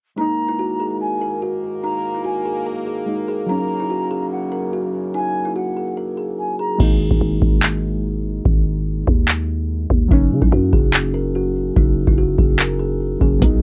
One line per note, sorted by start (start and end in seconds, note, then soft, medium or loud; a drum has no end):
0.16 3.46 G#2 medium
0.16 3.46 D#3 medium
0.16 3.03 G#3 medium
0.16 6.76 A#3 medium
0.16 3.04 A#3 medium
0.16 0.47 D#4 loud
0.16 0.97 A#5 loud
0.21 3.05 D#4 medium
0.48 0.56 E4 medium
0.59 0.75 F#4 medium
0.80 1.19 G#4 medium
1.00 1.39 G#5 medium
1.21 1.37 A#4 medium
1.42 1.81 F#4 medium
1.83 2.13 D#4 loud
1.83 2.22 A#5 loud
2.14 2.22 E4 medium
2.24 2.40 F#4 medium
2.24 2.64 G#5 medium
2.45 2.61 G#4 medium
2.66 2.82 A#4 medium
2.87 3.26 G#4 medium
3.06 3.48 G#3 medium
3.06 3.48 A#3 soft
3.06 3.49 D#4 medium
3.28 3.44 G#4 medium
3.46 6.77 F#2 medium
3.46 6.77 C#3 medium
3.46 6.75 F#3 medium
3.46 6.76 A#3 medium
3.46 3.78 D#4 loud
3.46 4.28 A#5 loud
3.51 6.77 C#4 medium
3.80 3.88 E4 medium
3.90 4.06 F#4 medium
4.11 4.50 G#4 medium
4.32 4.71 F#5 medium
4.52 4.68 A#4 medium
4.73 5.12 F#4 medium
5.14 5.43 D#4 loud
5.14 5.53 G#5 loud
5.45 5.53 E4 medium
5.56 5.71 F#4 medium
5.56 5.95 F#5 medium
5.77 5.92 G#4 medium
5.97 6.13 A#4 medium
6.17 6.56 G#4 medium
6.38 6.58 G#5 medium
6.59 6.75 G#4 medium
6.59 6.79 A#5 medium
6.78 7.10 G#1 loud
6.78 10.06 G#3 medium
6.78 10.07 A#3 medium
6.78 kick loud
6.78 crash medium
6.83 10.08 D#4 medium
7.11 7.21 G#1 loud
7.11 kick loud
7.21 7.41 G#1 loud
7.42 8.41 G#1 loud
7.42 kick loud
7.63 clap loud
8.45 9.05 G#1 loud
8.45 kick loud
9.07 9.87 D#2 loud
9.07 kick loud
9.28 clap loud
9.90 10.10 D#2 loud
9.90 kick medium
10.08 10.33 F#1 loud
10.08 13.16 F#3 medium
10.08 13.17 A#3 medium
10.08 10.40 D#4 loud
10.08 kick loud
10.13 13.18 C#4 medium
10.32 10.41 C#3 loud
10.42 10.52 A#1 loud
10.42 10.50 E4 medium
10.42 kick loud
10.52 10.72 F#2 loud
10.52 10.68 F#4 medium
10.73 11.72 F#1 loud
10.73 11.12 G#4 medium
10.73 kick loud
10.94 clap loud
11.14 11.30 A#4 medium
11.35 11.74 F#4 medium
11.76 12.06 F#1 loud
11.76 12.06 D#4 loud
11.76 kick loud
12.07 12.37 F#1 loud
12.07 12.15 E4 medium
12.07 kick loud
12.18 12.33 F#4 medium
12.38 13.18 F#1 loud
12.38 12.54 G#4 medium
12.38 kick loud
12.59 12.75 A#4 medium
12.59 clap loud
12.79 13.18 G#4 medium
13.19 13.41 F#1 loud
13.19 13.38 F#3 soft
13.19 13.41 A#3 soft
13.19 13.42 C#4 medium
13.19 13.37 G#4 medium
13.19 kick medium
13.39 13.62 B1 loud
13.39 13.62 F#3 medium
13.39 13.62 B3 medium
13.39 13.62 D#4 loud
13.39 kick loud
13.39 closed hi-hat medium
13.44 13.62 D#4 medium